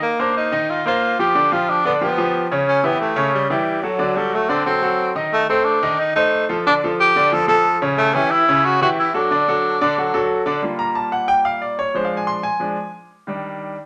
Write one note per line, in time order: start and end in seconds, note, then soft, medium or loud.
0.02 0.22 A#3 medium
0.19 0.46 A#3 medium
0.19 0.36 D4 medium
0.19 0.46 A#4 medium
0.19 0.47 C5 medium
0.37 0.72 D#4 medium
0.52 0.79 D#3 medium
0.52 0.79 D#4 medium
0.52 0.79 D#5 medium
0.70 0.86 F4 medium
0.86 1.13 A#3 medium
0.86 1.17 F4 medium
0.86 1.13 A#4 medium
0.86 1.13 C5 medium
1.19 1.32 F3 medium
1.19 1.33 F4 medium
1.19 1.32 G4 medium
1.19 1.54 G4 medium
1.35 1.48 D3 medium
1.35 1.49 D4 medium
1.35 1.49 D5 medium
1.52 1.79 F3 medium
1.52 1.79 F4 medium
1.52 1.71 F4 medium
1.52 1.79 G4 medium
1.70 1.85 D4 medium
1.85 1.98 D3 medium
1.85 1.93 B3 medium
1.85 1.99 D4 medium
1.85 1.99 D5 medium
2.01 2.15 F3 medium
2.01 2.48 B3 medium
2.01 2.15 F4 medium
2.01 2.15 G4 medium
2.18 2.45 F3 medium
2.18 2.45 F4 medium
2.18 2.45 G4 medium
2.51 2.78 C#3 medium
2.51 2.78 C#4 medium
2.51 2.79 C#5 medium
2.68 2.86 C#4 medium
2.83 3.11 E3 medium
2.83 3.00 B3 medium
2.83 3.11 E4 medium
2.83 3.11 G4 medium
3.01 3.31 A3 medium
3.16 3.43 C#3 medium
3.16 3.44 C#4 medium
3.16 3.44 C#5 medium
3.35 3.49 G3 medium
3.50 3.77 E3 medium
3.50 3.85 G3 medium
3.50 3.77 E4 medium
3.50 3.78 G4 medium
3.83 3.97 F#3 medium
3.83 4.19 F#3 medium
3.83 3.97 F#4 medium
3.83 3.97 A4 medium
3.99 4.13 D3 medium
3.99 4.13 D4 medium
3.99 4.13 D5 medium
4.16 4.43 F#3 medium
4.16 4.36 G3 medium
4.16 4.43 F#4 medium
4.16 4.44 A4 medium
4.34 4.51 A3 medium
4.49 4.63 D3 medium
4.49 4.65 C4 medium
4.49 4.63 D4 medium
4.49 4.63 D5 medium
4.66 4.79 F#3 medium
4.66 5.12 C4 medium
4.66 4.80 F#4 medium
4.66 4.80 A4 medium
4.82 5.09 F#3 medium
4.82 5.09 F#4 medium
4.82 5.10 A4 medium
5.15 5.42 D#3 medium
5.15 5.43 D#4 medium
5.15 5.43 D#5 medium
5.33 5.48 A3 loud
5.49 5.76 A3 medium
5.49 5.66 C4 loud
5.49 5.76 A4 medium
5.49 5.77 C5 medium
5.65 6.01 D4 medium
5.83 6.10 D#3 medium
5.83 6.10 D#4 medium
5.83 6.10 D#5 medium
6.00 6.15 D#4 medium
6.16 6.43 A3 medium
6.16 6.46 D#4 loud
6.16 6.43 A4 medium
6.16 6.43 C5 medium
6.49 6.63 F3 medium
6.49 6.62 F4 medium
6.49 6.63 A4 medium
6.66 6.80 D3 medium
6.66 6.79 D4 medium
6.66 6.74 D4 loud
6.66 6.80 D5 medium
6.84 7.10 F3 medium
6.84 7.10 F4 medium
6.84 7.10 A4 medium
7.00 7.35 G4 loud
7.16 7.29 D3 medium
7.16 7.29 D4 medium
7.16 7.29 D5 medium
7.32 7.46 F3 medium
7.32 7.45 F4 medium
7.32 7.46 A4 medium
7.32 7.48 A4 loud
7.48 7.75 F3 medium
7.48 7.75 F4 medium
7.48 7.79 A4 loud
7.48 7.76 A4 medium
7.82 8.09 C#3 medium
7.82 8.09 C#4 medium
7.82 8.09 C#5 medium
7.98 8.16 A3 loud
8.14 8.42 E3 medium
8.14 8.32 C#4 loud
8.14 8.42 E4 medium
8.14 8.42 G4 medium
8.31 8.67 E4 medium
8.48 8.75 C#3 medium
8.48 8.75 C#4 medium
8.48 8.76 C#5 medium
8.65 8.81 F#4 loud
8.81 9.08 E3 medium
8.81 9.08 E4 medium
8.81 8.89 F#4 loud
8.81 9.09 G4 medium
9.00 9.14 E4 medium
9.14 9.28 F#3 medium
9.14 10.27 D4 medium
9.14 9.28 F#4 medium
9.14 9.28 A4 medium
9.31 9.44 D3 medium
9.31 9.45 D4 medium
9.31 9.45 D5 medium
9.48 9.75 F#3 medium
9.48 9.75 F#4 medium
9.48 9.75 A4 medium
9.81 9.94 D3 medium
9.81 9.94 D4 loud
9.81 9.95 D5 loud
9.98 10.11 F#3 medium
9.98 10.11 F#4 medium
9.98 10.11 A4 medium
10.14 10.41 F#3 medium
10.14 10.41 F#4 medium
10.14 10.41 A4 medium
10.46 10.60 D3 medium
10.46 10.60 D4 medium
10.46 10.60 D5 medium
10.62 11.91 G3 medium
10.62 11.91 A#3 medium
10.62 11.92 F4 medium
10.79 10.95 A#5 medium
10.95 11.12 A5 medium
11.12 11.28 F#5 medium
11.28 11.45 G5 loud
11.45 11.61 F5 medium
11.62 11.78 D5 medium
11.79 11.95 C#5 medium
11.94 12.42 F3 medium
11.94 12.42 G#3 medium
11.94 12.42 D4 medium
11.94 12.06 C5 medium
12.05 12.16 F5 medium
12.17 12.28 G#5 medium
12.27 12.44 C6 loud
12.43 12.90 G#5 medium
12.60 12.75 F3 medium
12.60 12.75 G#3 soft
12.60 12.76 D4 medium
13.27 13.74 D#3 medium
13.27 13.75 G3 medium
13.27 13.75 D4 medium